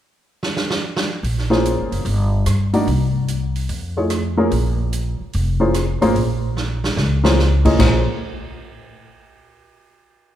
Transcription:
0.43 snare medium
0.57 snare medium
0.70 snare medium
0.96 snare medium
1.23 1.74 A#1 medium
1.23 open hi-hat soft
1.38 snare soft
1.50 2.02 A#3 medium
1.50 2.03 C#4 medium
1.50 2.03 F4 medium
1.50 2.03 G#4 medium
1.50 2.03 C5 medium
1.50 snare soft
1.65 closed hi-hat medium
1.78 1.91 G#1 medium
1.92 2.04 F#1 medium
1.92 open hi-hat soft
2.05 2.43 G1 medium
2.05 open hi-hat soft
2.46 2.84 G2 medium
2.46 cross-stick medium
2.46 closed hi-hat medium
2.73 2.86 A#3 medium
2.73 2.86 D4 medium
2.73 2.86 D#4 medium
2.73 2.86 F#4 medium
2.73 2.86 D5 medium
2.73 open hi-hat soft
2.87 3.65 C2 medium
2.87 open hi-hat soft
3.28 closed hi-hat medium
3.56 open hi-hat soft
3.69 4.47 F2 medium
3.69 open hi-hat soft
3.97 4.09 A3 medium
3.97 4.09 D#4 soft
3.97 4.09 F4 soft
3.97 4.10 G#4 soft
3.97 4.10 C#5 medium
4.10 cross-stick medium
4.10 closed hi-hat medium
4.37 4.50 A#3 medium
4.37 4.50 C#4 medium
4.37 4.50 F4 medium
4.37 4.50 G#4 medium
4.37 4.50 A#4 medium
4.51 5.16 A#1 medium
4.51 open hi-hat soft
4.93 closed hi-hat medium
5.20 muted upright bass stroke soft
5.33 5.98 F1 medium
5.33 open hi-hat soft
5.60 5.73 A#3 medium
5.60 5.73 C#4 medium
5.60 5.73 F4 medium
5.60 5.73 G#4 medium
5.60 5.73 C5 medium
5.74 cross-stick medium
5.74 closed hi-hat medium
6.01 6.15 G#1 medium
6.01 6.14 A#3 medium
6.01 6.14 C#4 medium
6.01 6.14 F4 medium
6.01 6.14 G#4 medium
6.01 6.14 C5 medium
6.01 open hi-hat soft
6.16 6.93 A#1 medium
6.16 open hi-hat soft
6.57 snare soft
6.84 snare medium
6.96 7.75 C#2 medium
6.96 snare medium
7.24 7.37 A#3 medium
7.24 7.37 C#4 medium
7.24 7.37 F4 medium
7.24 7.37 G#4 medium
7.24 7.37 C5 medium
7.24 snare medium
7.39 snare medium
7.65 7.78 A#3 medium
7.65 7.78 C#4 medium
7.65 7.78 F4 medium
7.65 7.78 G#4 medium
7.65 7.78 D#5 medium
7.65 kick medium
7.65 crash medium
7.79 8.05 A#1 medium
7.79 8.04 A#3 medium
7.79 8.04 C#4 medium
7.79 8.04 F4 medium
7.79 8.04 G#4 medium
7.79 8.04 C5 medium
7.79 kick medium
7.79 snare medium
7.79 ride bell medium

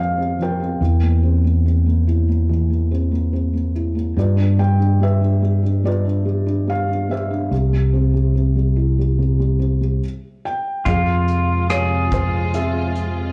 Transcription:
0.00 0.76 F2 medium
0.00 0.39 F3 medium
0.00 0.18 C4 soft
0.00 0.81 G#4 medium
0.00 0.42 C5 medium
0.00 0.82 D#5 medium
0.00 0.82 F5 medium
0.18 0.58 C4 soft
0.39 0.79 F3 soft
0.39 2.04 A#4 medium
0.39 2.04 C5 medium
0.39 1.62 G5 medium
0.60 0.80 C4 soft
0.81 4.12 E2 medium
0.81 2.48 E3 medium
1.02 1.43 A#3 soft
1.23 1.64 C4 soft
1.44 1.85 A#3 soft
1.66 2.90 C4 soft
1.86 2.27 A#3 soft
2.07 3.70 E4 medium
2.28 2.68 A#3 soft
2.49 4.12 E3 medium
2.70 3.10 A#3 soft
2.91 3.32 C4 soft
3.11 3.52 A#3 soft
3.33 4.14 C4 soft
3.53 3.94 A#3 soft
3.75 4.15 E4 soft
3.95 4.15 A#3 soft
4.16 7.48 G2 medium
4.16 4.57 G3 medium
4.16 5.81 F4 medium
4.16 5.02 B4 medium
4.16 4.60 D5 medium
4.37 4.78 D4 soft
4.59 4.99 G3 medium
4.59 5.01 G5 medium
4.80 5.20 D4 medium
5.00 5.40 G3 soft
5.00 5.85 B4 medium
5.00 5.88 E5 medium
5.21 5.61 D4 soft
5.42 5.82 G3 soft
5.63 6.03 D4 soft
5.84 6.24 G3 medium
5.84 7.49 F4 medium
5.84 7.49 B4 medium
5.84 6.71 D5 medium
6.05 6.45 D4 soft
6.25 6.66 G3 medium
6.46 6.87 D4 soft
6.67 7.08 G3 soft
6.67 7.12 F5 medium
6.88 7.29 D4 soft
7.09 7.50 G3 soft
7.09 10.43 G4 medium
7.09 10.43 C5 medium
7.09 10.42 E5 medium
7.31 7.51 D4 soft
7.51 9.99 C2 medium
7.51 9.17 C3 medium
7.73 8.12 G3 soft
7.93 8.34 C4 medium
8.14 8.54 G3 soft
8.35 9.58 C4 soft
8.56 8.97 G3 soft
8.76 9.99 E4 medium
8.99 9.38 G3 soft
9.19 10.00 C3 medium
9.39 9.79 G3 soft
9.59 10.01 C4 soft
9.81 10.02 G3 soft
10.45 10.88 G5 medium
10.85 13.32 F2 medium
10.85 13.32 C3 medium
10.85 13.32 F3 medium
10.85 13.32 G#3 medium
10.85 11.69 F4 medium
10.85 13.32 F4 medium
10.85 11.69 G#4 medium
10.85 11.73 F5 medium
10.85 kick medium
10.85 closed hi-hat medium
11.28 closed hi-hat medium
11.69 12.52 C3 soft
11.69 12.52 F4 soft
11.69 13.32 G#4 medium
11.69 12.52 G#4 soft
11.69 12.10 C#5 medium
11.69 cross-stick medium
11.69 closed hi-hat medium
12.12 12.56 C5 medium
12.12 kick medium
12.12 closed hi-hat soft
12.54 13.32 C4 soft
12.54 13.32 F4 soft
12.54 13.32 G#4 soft
12.54 13.32 E5 medium
12.54 closed hi-hat medium
12.95 closed hi-hat soft

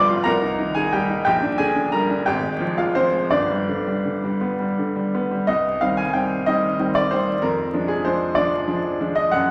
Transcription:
0.00 0.23 G1 medium
0.00 0.24 G2 medium
0.00 0.29 F3 medium
0.00 0.20 G3 medium
0.00 0.10 F4 medium
0.00 0.29 B4 medium
0.00 0.29 C5 medium
0.00 0.24 D5 medium
0.00 0.29 B5 loud
0.00 0.29 C6 loud
0.00 0.26 D6 loud
0.10 0.26 F4 medium
0.24 1.23 C2 medium
0.24 0.72 A#4 loud
0.24 0.75 A#5 loud
0.42 0.69 D#4 medium
0.59 0.86 D#3 medium
0.75 1.03 D#4 medium
0.75 0.92 G#4 medium
0.75 0.92 G#5 medium
0.93 1.20 G3 medium
0.93 1.24 G4 medium
0.93 1.23 G5 loud
1.10 1.26 D#4 medium
1.25 2.23 A#1 medium
1.25 1.57 G4 medium
1.25 1.59 G5 loud
1.42 1.69 D4 medium
1.58 1.86 D3 medium
1.58 1.91 G#4 medium
1.58 1.92 G#5 loud
1.76 2.03 D4 medium
1.92 2.20 G3 medium
1.92 2.24 A#4 medium
1.92 2.26 A#5 medium
2.10 2.27 D4 medium
2.26 3.29 G#1 medium
2.26 2.74 G4 medium
2.26 2.77 G5 loud
2.43 2.71 G#3 medium
2.60 2.88 F3 medium
2.78 3.06 G#3 medium
2.78 2.95 F4 medium
2.78 2.95 F5 medium
2.95 3.25 F3 medium
2.95 3.30 C4 medium
2.95 3.32 C5 loud
3.13 3.32 G#3 medium
3.31 5.44 G1 medium
3.31 4.38 D4 medium
3.31 4.41 D5 medium
3.50 3.80 G3 medium
3.68 3.98 D3 medium
3.87 4.16 G3 medium
4.05 4.34 D3 soft
4.24 4.52 G3 medium
4.41 4.70 B3 medium
4.60 4.88 G3 medium
4.79 5.07 D3 medium
4.96 5.24 G3 medium
5.15 5.42 B3 medium
5.31 5.48 G3 medium
5.47 5.80 C2 medium
5.47 5.81 D#5 medium
5.81 6.12 D#3 soft
5.81 6.12 G3 soft
5.81 6.12 C4 soft
5.81 5.98 F5 loud
5.97 6.14 G#5 medium
6.13 6.44 D#3 soft
6.13 6.44 G3 soft
6.13 6.45 C4 soft
6.13 6.47 G5 medium
6.46 6.77 D#3 soft
6.46 6.77 G3 soft
6.46 6.77 C4 medium
6.46 6.95 D#5 medium
6.79 7.08 D#3 soft
6.79 7.08 G3 soft
6.79 7.08 C4 soft
6.95 7.11 D5 medium
7.11 7.40 D#3 soft
7.11 7.40 G3 soft
7.11 7.40 C4 soft
7.11 7.42 C5 medium
7.42 7.73 F2 medium
7.42 7.89 A#4 medium
7.74 8.02 F3 soft
7.74 8.02 G#3 soft
7.74 8.02 D4 medium
7.88 8.04 G#4 medium
8.05 8.34 F3 soft
8.05 8.34 G#3 soft
8.05 8.34 D4 soft
8.05 8.36 C5 medium
8.35 8.65 F3 medium
8.35 8.65 G#3 medium
8.35 8.65 D4 medium
8.35 9.15 D5 medium
8.67 8.96 F3 soft
8.67 8.97 G#3 medium
8.67 8.97 D4 medium
9.00 9.29 F3 soft
9.00 9.30 G#3 medium
9.00 9.30 D4 soft
9.15 9.32 D#5 loud
9.31 9.51 F#2 medium
9.31 9.51 F#5 medium

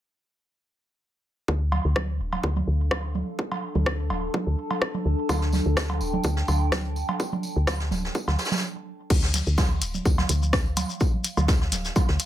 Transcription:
1.48 1.80 D2 medium
1.48 8.63 D4 medium
1.48 kick loud
1.65 8.63 A4 medium
1.69 5.50 F5 medium
1.69 cowbell medium
1.69 high conga soft
1.85 2.21 D2 medium
1.96 kick loud
1.96 cross-stick medium
1.96 high conga medium
2.20 2.38 D1 loud
2.33 cowbell medium
2.33 high conga soft
2.44 2.62 D2 loud
2.44 kick loud
2.56 high conga medium
2.67 3.23 D2 medium
2.91 kick loud
2.91 cross-stick medium
2.91 cowbell medium
2.91 high conga soft
3.15 8.63 A5 medium
3.15 high conga medium
3.39 kick loud
3.52 cowbell medium
3.52 high conga soft
3.75 4.12 D2 medium
3.75 high conga medium
3.86 kick loud
3.86 cross-stick loud
4.10 4.29 D1 loud
4.10 cowbell medium
4.10 high conga soft
4.34 kick loud
4.34 high conga medium
4.47 4.55 D2 medium
4.71 cowbell medium
4.71 high conga soft
4.82 kick loud
4.82 cross-stick medium
4.94 high conga medium
5.05 5.15 D2 medium
5.29 5.61 D2 loud
5.29 kick loud
5.29 tambourine medium
5.29 cowbell medium
5.29 high conga soft
5.36 8.63 G5 medium
5.42 snare soft
5.52 snare soft
5.52 tambourine medium
5.52 high conga medium
5.66 6.02 D2 medium
5.77 kick loud
5.77 cross-stick medium
5.77 snare loud
5.77 tambourine medium
5.90 cowbell medium
5.90 high conga soft
6.01 6.19 D1 loud
6.01 tambourine medium
6.13 high conga medium
6.23 6.43 D2 loud
6.23 kick loud
6.23 tambourine medium
6.37 snare medium
6.48 7.04 D2 medium
6.48 tambourine medium
6.48 cowbell medium
6.48 high conga soft
6.72 kick loud
6.72 cross-stick medium
6.72 snare loud
6.72 tambourine medium
6.72 high conga medium
6.85 closed hi-hat soft
6.96 tambourine medium
7.09 cowbell medium
7.09 high conga soft
7.20 kick loud
7.20 tambourine medium
7.33 high conga medium
7.43 tambourine medium
7.56 7.93 D2 medium
7.67 kick loud
7.67 cross-stick medium
7.67 snare loud
7.67 tambourine medium
7.67 cowbell medium
7.67 high conga soft
7.80 snare medium
7.91 8.10 D1 loud
7.91 snare soft
7.91 tambourine medium
7.91 high conga medium
8.05 snare soft
8.15 kick loud
8.15 tambourine medium
8.28 8.36 D2 medium
8.28 snare medium
8.28 cowbell medium
8.28 high conga soft
8.39 snare medium
8.39 tambourine medium
8.45 snare medium
8.45 tambourine medium
8.51 snare medium
8.51 tambourine medium
8.51 high conga medium
8.57 snare medium
8.57 tambourine medium
9.10 9.42 D2 medium
9.10 kick loud
9.10 crash medium
9.10 tambourine medium
9.10 shekere soft
9.22 snare soft
9.34 snare soft
9.34 closed hi-hat medium
9.34 tambourine medium
9.34 high conga soft
9.34 shekere loud
9.46 9.83 D2 medium
9.46 shekere soft
9.58 kick loud
9.58 snare loud
9.58 tambourine loud
9.58 cowbell medium
9.58 high conga medium
9.58 shekere soft
9.74 12.26 F5 medium
9.81 10.00 D1 loud
9.81 closed hi-hat medium
9.81 tambourine medium
9.81 shekere medium
9.94 high conga soft
9.94 shekere soft
10.05 10.24 D2 loud
10.05 kick loud
10.05 tambourine medium
10.05 shekere soft
10.18 snare medium
10.18 cowbell medium
10.18 high conga medium
10.29 10.85 D2 medium
10.29 closed hi-hat medium
10.29 tambourine medium
10.29 low conga medium
10.29 shekere loud
10.43 shekere medium
10.53 kick loud
10.53 cross-stick loud
10.53 snare loud
10.53 tambourine medium
10.53 high conga soft
10.53 shekere soft
10.66 closed hi-hat soft
10.77 closed hi-hat medium
10.77 tambourine medium
10.77 cowbell medium
10.77 high conga medium
10.77 shekere medium
10.89 shekere medium
11.00 kick loud
11.00 tambourine medium
11.00 shekere soft
11.13 high conga soft
11.24 closed hi-hat medium
11.24 tambourine medium
11.24 shekere loud
11.37 11.74 D2 medium
11.37 cowbell medium
11.37 high conga medium
11.37 shekere medium
11.48 kick loud
11.48 snare loud
11.48 tambourine medium
11.48 shekere soft
11.61 snare soft
11.72 11.91 D1 loud
11.72 snare soft
11.72 closed hi-hat medium
11.72 tambourine medium
11.72 high conga soft
11.72 shekere loud
11.85 snare medium
11.85 shekere medium
11.96 kick loud
11.96 tambourine medium
11.96 cowbell medium
11.96 high conga medium
11.96 shekere soft
12.08 12.17 D2 medium
12.08 snare medium
12.20 closed hi-hat medium
12.20 tambourine medium
12.20 shekere medium

